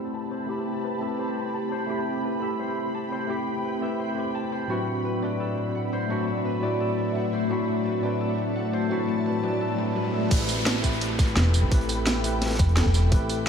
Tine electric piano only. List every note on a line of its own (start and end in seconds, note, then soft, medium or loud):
0.00 0.46 A3 medium
0.00 0.48 C4 medium
0.00 0.49 E4 medium
0.00 0.50 G4 medium
0.00 3.83 B4 medium
0.00 0.48 B5 medium
0.46 0.98 A3 medium
0.46 0.99 C4 medium
0.46 0.99 E4 medium
0.46 1.00 G4 medium
0.51 1.01 B5 medium
0.99 1.86 A3 medium
0.99 1.86 C4 medium
0.99 1.87 E4 medium
0.99 1.88 G4 medium
1.04 1.88 B5 medium
1.87 2.39 A3 medium
1.87 2.39 C4 medium
1.87 2.40 E4 medium
1.87 2.40 G4 medium
1.92 2.41 B5 medium
2.40 3.26 A3 medium
2.40 3.27 C4 medium
2.40 3.27 E4 medium
2.40 3.28 G4 medium
2.44 3.29 B5 medium
3.27 3.79 A3 medium
3.27 3.79 C4 medium
3.27 3.80 E4 medium
3.27 3.81 G4 medium
3.32 3.81 B5 medium
3.81 4.14 A3 medium
3.81 4.15 C4 medium
3.81 4.15 E4 medium
3.81 4.16 G4 medium
3.81 4.16 B4 medium
4.15 4.67 A3 medium
4.15 4.67 C4 medium
4.15 4.68 E4 medium
4.15 4.68 G4 medium
4.19 4.69 C5 medium
4.67 5.19 A2 medium
4.67 5.20 F#3 medium
4.67 5.20 C4 medium
4.67 5.21 D4 medium
4.67 5.21 E4 medium
4.72 5.22 B4 medium
5.20 6.07 A2 medium
5.20 6.07 F#3 medium
5.20 6.08 C4 medium
5.20 6.08 D4 medium
5.20 6.09 E4 medium
5.25 6.09 B4 medium
6.08 6.59 A2 medium
6.08 6.60 F#3 medium
6.08 6.60 C4 medium
6.08 6.61 D4 medium
6.08 6.61 E4 medium
6.12 6.62 B5 medium
6.60 7.47 A2 medium
6.60 7.48 F#3 medium
6.60 7.48 C4 medium
6.60 7.49 D4 medium
6.60 7.49 E4 medium
6.65 7.50 B4 medium
7.48 8.00 A2 medium
7.48 8.00 F#3 medium
7.48 8.01 C4 medium
7.48 8.01 D4 medium
7.48 8.02 E4 medium
7.53 8.02 B5 medium
8.01 8.87 A2 medium
8.01 8.88 F#3 medium
8.01 8.89 C4 medium
8.01 8.89 D4 medium
8.01 8.89 E4 medium
8.06 8.90 B4 medium
8.88 9.40 A2 medium
8.88 9.41 F#3 medium
8.88 9.41 C4 medium
8.88 9.42 D4 medium
8.88 9.42 E4 medium
8.93 9.43 B5 medium
9.42 9.75 A2 medium
9.42 9.76 F#3 medium
9.42 9.77 C4 medium
9.42 9.77 D4 medium
9.42 9.77 E4 medium
9.42 9.77 B4 medium
9.76 10.28 A2 medium
9.76 10.29 F#3 medium
9.76 10.29 C4 medium
9.76 10.29 D4 medium
9.76 10.30 E4 medium
10.29 10.80 A3 medium
10.29 10.81 C4 medium
10.29 10.82 E4 medium
10.29 10.82 G4 medium
10.34 10.83 B4 loud
10.81 11.68 A3 medium
10.81 11.69 C4 medium
10.81 11.70 E4 medium
10.81 11.70 G4 medium
10.86 11.71 B4 medium
11.69 12.21 A3 medium
11.69 12.22 C4 medium
11.69 12.22 E4 medium
11.69 12.23 G4 medium
11.74 12.23 B4 loud
12.22 13.08 A3 medium
12.22 13.09 C4 medium
12.22 13.10 E4 medium
12.22 13.11 G4 medium
12.27 13.11 B4 medium
13.10 13.49 A3 medium
13.10 13.49 C4 medium
13.10 13.49 E4 medium
13.10 13.49 G4 medium
13.14 13.49 B4 loud